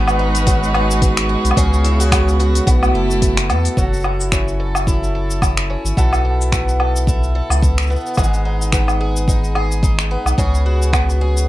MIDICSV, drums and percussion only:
0, 0, Header, 1, 2, 480
1, 0, Start_track
1, 0, Tempo, 550459
1, 1369, Time_signature, 4, 2, 24, 8
1, 10014, End_track
2, 0, Start_track
2, 0, Title_t, "Drums"
2, 66, Note_on_c, 9, 77, 89
2, 74, Note_on_c, 9, 82, 32
2, 153, Note_off_c, 9, 77, 0
2, 161, Note_off_c, 9, 82, 0
2, 304, Note_on_c, 9, 46, 51
2, 312, Note_on_c, 9, 82, 65
2, 391, Note_off_c, 9, 46, 0
2, 399, Note_off_c, 9, 82, 0
2, 408, Note_on_c, 9, 46, 59
2, 409, Note_on_c, 9, 36, 105
2, 416, Note_on_c, 9, 82, 52
2, 495, Note_off_c, 9, 46, 0
2, 496, Note_off_c, 9, 36, 0
2, 503, Note_off_c, 9, 82, 0
2, 554, Note_on_c, 9, 82, 32
2, 641, Note_off_c, 9, 82, 0
2, 649, Note_on_c, 9, 77, 77
2, 736, Note_off_c, 9, 77, 0
2, 792, Note_on_c, 9, 82, 68
2, 879, Note_off_c, 9, 82, 0
2, 888, Note_on_c, 9, 36, 102
2, 889, Note_on_c, 9, 46, 59
2, 898, Note_on_c, 9, 82, 56
2, 976, Note_off_c, 9, 36, 0
2, 977, Note_off_c, 9, 46, 0
2, 985, Note_off_c, 9, 82, 0
2, 1023, Note_on_c, 9, 26, 75
2, 1023, Note_on_c, 9, 46, 47
2, 1031, Note_on_c, 9, 82, 33
2, 1110, Note_off_c, 9, 26, 0
2, 1110, Note_off_c, 9, 46, 0
2, 1118, Note_off_c, 9, 82, 0
2, 1263, Note_on_c, 9, 46, 44
2, 1271, Note_on_c, 9, 82, 61
2, 1317, Note_on_c, 9, 77, 76
2, 1350, Note_off_c, 9, 46, 0
2, 1359, Note_off_c, 9, 82, 0
2, 1368, Note_on_c, 9, 36, 104
2, 1372, Note_on_c, 9, 46, 60
2, 1380, Note_on_c, 9, 82, 59
2, 1404, Note_off_c, 9, 77, 0
2, 1455, Note_off_c, 9, 36, 0
2, 1459, Note_off_c, 9, 46, 0
2, 1467, Note_off_c, 9, 82, 0
2, 1514, Note_on_c, 9, 82, 32
2, 1602, Note_off_c, 9, 82, 0
2, 1609, Note_on_c, 9, 46, 54
2, 1696, Note_off_c, 9, 46, 0
2, 1744, Note_on_c, 9, 46, 46
2, 1752, Note_on_c, 9, 82, 64
2, 1831, Note_off_c, 9, 46, 0
2, 1839, Note_off_c, 9, 82, 0
2, 1848, Note_on_c, 9, 36, 102
2, 1851, Note_on_c, 9, 26, 89
2, 1851, Note_on_c, 9, 46, 59
2, 1851, Note_on_c, 9, 77, 88
2, 1859, Note_on_c, 9, 82, 57
2, 1935, Note_off_c, 9, 36, 0
2, 1938, Note_off_c, 9, 26, 0
2, 1938, Note_off_c, 9, 46, 0
2, 1938, Note_off_c, 9, 77, 0
2, 1946, Note_off_c, 9, 82, 0
2, 1993, Note_on_c, 9, 82, 35
2, 2081, Note_off_c, 9, 82, 0
2, 2092, Note_on_c, 9, 46, 36
2, 2179, Note_off_c, 9, 46, 0
2, 2226, Note_on_c, 9, 46, 53
2, 2234, Note_on_c, 9, 82, 73
2, 2313, Note_off_c, 9, 46, 0
2, 2322, Note_off_c, 9, 82, 0
2, 2327, Note_on_c, 9, 36, 107
2, 2332, Note_on_c, 9, 46, 60
2, 2340, Note_on_c, 9, 82, 54
2, 2415, Note_off_c, 9, 36, 0
2, 2419, Note_off_c, 9, 46, 0
2, 2427, Note_off_c, 9, 82, 0
2, 2465, Note_on_c, 9, 77, 81
2, 2473, Note_on_c, 9, 82, 34
2, 2552, Note_off_c, 9, 77, 0
2, 2560, Note_off_c, 9, 82, 0
2, 2709, Note_on_c, 9, 82, 64
2, 2796, Note_off_c, 9, 82, 0
2, 2808, Note_on_c, 9, 36, 93
2, 2808, Note_on_c, 9, 46, 59
2, 2816, Note_on_c, 9, 82, 51
2, 2895, Note_off_c, 9, 36, 0
2, 2895, Note_off_c, 9, 46, 0
2, 2904, Note_off_c, 9, 82, 0
2, 2942, Note_on_c, 9, 26, 79
2, 2942, Note_on_c, 9, 46, 47
2, 2950, Note_on_c, 9, 82, 31
2, 3029, Note_off_c, 9, 26, 0
2, 3029, Note_off_c, 9, 46, 0
2, 3037, Note_off_c, 9, 82, 0
2, 3049, Note_on_c, 9, 46, 33
2, 3049, Note_on_c, 9, 77, 78
2, 3136, Note_off_c, 9, 46, 0
2, 3136, Note_off_c, 9, 77, 0
2, 3183, Note_on_c, 9, 46, 44
2, 3191, Note_on_c, 9, 82, 63
2, 3271, Note_off_c, 9, 46, 0
2, 3279, Note_off_c, 9, 82, 0
2, 3288, Note_on_c, 9, 36, 98
2, 3295, Note_on_c, 9, 82, 52
2, 3375, Note_off_c, 9, 36, 0
2, 3382, Note_off_c, 9, 82, 0
2, 3430, Note_on_c, 9, 82, 28
2, 3449, Note_off_c, 9, 82, 0
2, 3449, Note_on_c, 9, 82, 24
2, 3457, Note_off_c, 9, 82, 0
2, 3457, Note_on_c, 9, 82, 19
2, 3484, Note_off_c, 9, 82, 0
2, 3484, Note_on_c, 9, 82, 16
2, 3502, Note_off_c, 9, 82, 0
2, 3502, Note_on_c, 9, 82, 13
2, 3518, Note_off_c, 9, 82, 0
2, 3518, Note_on_c, 9, 82, 11
2, 3526, Note_on_c, 9, 77, 65
2, 3605, Note_off_c, 9, 82, 0
2, 3614, Note_off_c, 9, 77, 0
2, 3668, Note_on_c, 9, 82, 57
2, 3755, Note_off_c, 9, 82, 0
2, 3767, Note_on_c, 9, 26, 77
2, 3767, Note_on_c, 9, 36, 97
2, 3775, Note_on_c, 9, 82, 55
2, 3854, Note_off_c, 9, 26, 0
2, 3854, Note_off_c, 9, 36, 0
2, 3862, Note_off_c, 9, 82, 0
2, 3908, Note_on_c, 9, 82, 31
2, 3995, Note_off_c, 9, 82, 0
2, 4142, Note_on_c, 9, 77, 80
2, 4150, Note_on_c, 9, 82, 61
2, 4229, Note_off_c, 9, 77, 0
2, 4237, Note_off_c, 9, 82, 0
2, 4247, Note_on_c, 9, 36, 96
2, 4255, Note_on_c, 9, 82, 54
2, 4334, Note_off_c, 9, 36, 0
2, 4342, Note_off_c, 9, 82, 0
2, 4391, Note_on_c, 9, 82, 28
2, 4478, Note_off_c, 9, 82, 0
2, 4628, Note_on_c, 9, 82, 59
2, 4715, Note_off_c, 9, 82, 0
2, 4726, Note_on_c, 9, 36, 93
2, 4727, Note_on_c, 9, 77, 75
2, 4735, Note_on_c, 9, 82, 52
2, 4814, Note_off_c, 9, 36, 0
2, 4814, Note_off_c, 9, 77, 0
2, 4822, Note_off_c, 9, 82, 0
2, 4861, Note_on_c, 9, 26, 75
2, 4869, Note_on_c, 9, 82, 30
2, 4948, Note_off_c, 9, 26, 0
2, 4956, Note_off_c, 9, 82, 0
2, 5107, Note_on_c, 9, 82, 58
2, 5195, Note_off_c, 9, 82, 0
2, 5207, Note_on_c, 9, 36, 93
2, 5214, Note_on_c, 9, 82, 54
2, 5295, Note_off_c, 9, 36, 0
2, 5301, Note_off_c, 9, 82, 0
2, 5342, Note_on_c, 9, 77, 74
2, 5351, Note_on_c, 9, 82, 30
2, 5430, Note_off_c, 9, 77, 0
2, 5438, Note_off_c, 9, 82, 0
2, 5593, Note_on_c, 9, 82, 61
2, 5680, Note_off_c, 9, 82, 0
2, 5688, Note_on_c, 9, 36, 108
2, 5690, Note_on_c, 9, 26, 78
2, 5698, Note_on_c, 9, 82, 54
2, 5775, Note_off_c, 9, 36, 0
2, 5777, Note_off_c, 9, 26, 0
2, 5785, Note_off_c, 9, 82, 0
2, 5831, Note_on_c, 9, 82, 33
2, 5919, Note_off_c, 9, 82, 0
2, 5928, Note_on_c, 9, 77, 70
2, 6015, Note_off_c, 9, 77, 0
2, 6071, Note_on_c, 9, 82, 69
2, 6158, Note_off_c, 9, 82, 0
2, 6167, Note_on_c, 9, 36, 102
2, 6177, Note_on_c, 9, 82, 55
2, 6254, Note_off_c, 9, 36, 0
2, 6264, Note_off_c, 9, 82, 0
2, 6309, Note_on_c, 9, 82, 31
2, 6397, Note_off_c, 9, 82, 0
2, 6543, Note_on_c, 9, 77, 69
2, 6551, Note_on_c, 9, 82, 64
2, 6630, Note_off_c, 9, 77, 0
2, 6638, Note_off_c, 9, 82, 0
2, 6649, Note_on_c, 9, 36, 99
2, 6657, Note_on_c, 9, 82, 50
2, 6736, Note_off_c, 9, 36, 0
2, 6744, Note_off_c, 9, 82, 0
2, 6785, Note_on_c, 9, 26, 76
2, 6793, Note_on_c, 9, 82, 30
2, 6819, Note_off_c, 9, 82, 0
2, 6819, Note_on_c, 9, 82, 26
2, 6872, Note_off_c, 9, 26, 0
2, 6900, Note_off_c, 9, 82, 0
2, 6900, Note_on_c, 9, 82, 17
2, 6943, Note_off_c, 9, 82, 0
2, 6943, Note_on_c, 9, 82, 13
2, 6977, Note_off_c, 9, 82, 0
2, 6977, Note_on_c, 9, 82, 12
2, 7032, Note_off_c, 9, 82, 0
2, 7032, Note_on_c, 9, 82, 25
2, 7103, Note_off_c, 9, 82, 0
2, 7103, Note_on_c, 9, 82, 39
2, 7128, Note_on_c, 9, 36, 106
2, 7128, Note_on_c, 9, 77, 65
2, 7136, Note_off_c, 9, 82, 0
2, 7136, Note_on_c, 9, 82, 53
2, 7182, Note_off_c, 9, 82, 0
2, 7182, Note_on_c, 9, 82, 54
2, 7215, Note_off_c, 9, 36, 0
2, 7215, Note_off_c, 9, 77, 0
2, 7269, Note_off_c, 9, 82, 0
2, 7271, Note_on_c, 9, 82, 33
2, 7358, Note_off_c, 9, 82, 0
2, 7513, Note_on_c, 9, 82, 69
2, 7600, Note_off_c, 9, 82, 0
2, 7608, Note_on_c, 9, 26, 74
2, 7610, Note_on_c, 9, 36, 105
2, 7616, Note_on_c, 9, 82, 55
2, 7695, Note_off_c, 9, 26, 0
2, 7697, Note_off_c, 9, 36, 0
2, 7703, Note_off_c, 9, 82, 0
2, 7744, Note_on_c, 9, 77, 71
2, 7753, Note_on_c, 9, 82, 35
2, 7832, Note_off_c, 9, 77, 0
2, 7840, Note_off_c, 9, 82, 0
2, 7993, Note_on_c, 9, 82, 68
2, 8080, Note_off_c, 9, 82, 0
2, 8090, Note_on_c, 9, 36, 106
2, 8101, Note_on_c, 9, 82, 52
2, 8177, Note_off_c, 9, 36, 0
2, 8188, Note_off_c, 9, 82, 0
2, 8234, Note_on_c, 9, 82, 31
2, 8321, Note_off_c, 9, 82, 0
2, 8331, Note_on_c, 9, 77, 70
2, 8418, Note_off_c, 9, 77, 0
2, 8473, Note_on_c, 9, 82, 65
2, 8561, Note_off_c, 9, 82, 0
2, 8570, Note_on_c, 9, 36, 100
2, 8578, Note_on_c, 9, 82, 53
2, 8657, Note_off_c, 9, 36, 0
2, 8666, Note_off_c, 9, 82, 0
2, 8708, Note_on_c, 9, 26, 76
2, 8716, Note_on_c, 9, 82, 34
2, 8795, Note_off_c, 9, 26, 0
2, 8803, Note_off_c, 9, 82, 0
2, 8948, Note_on_c, 9, 77, 63
2, 8956, Note_on_c, 9, 82, 59
2, 9035, Note_off_c, 9, 77, 0
2, 9043, Note_off_c, 9, 82, 0
2, 9050, Note_on_c, 9, 36, 105
2, 9062, Note_on_c, 9, 82, 55
2, 9137, Note_off_c, 9, 36, 0
2, 9149, Note_off_c, 9, 82, 0
2, 9197, Note_on_c, 9, 82, 33
2, 9285, Note_off_c, 9, 82, 0
2, 9438, Note_on_c, 9, 82, 61
2, 9525, Note_off_c, 9, 82, 0
2, 9530, Note_on_c, 9, 36, 98
2, 9535, Note_on_c, 9, 26, 70
2, 9535, Note_on_c, 9, 77, 71
2, 9543, Note_on_c, 9, 82, 58
2, 9618, Note_off_c, 9, 36, 0
2, 9622, Note_off_c, 9, 26, 0
2, 9622, Note_off_c, 9, 77, 0
2, 9630, Note_off_c, 9, 82, 0
2, 9677, Note_on_c, 9, 82, 35
2, 9764, Note_off_c, 9, 82, 0
2, 9916, Note_on_c, 9, 82, 66
2, 10003, Note_off_c, 9, 82, 0
2, 10014, End_track
0, 0, End_of_file